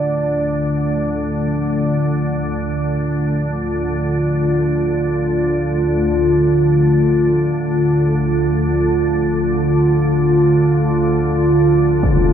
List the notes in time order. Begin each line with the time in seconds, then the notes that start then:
Already playing: D2 D3 A3 F4 D5
12.00 D3 F4, impact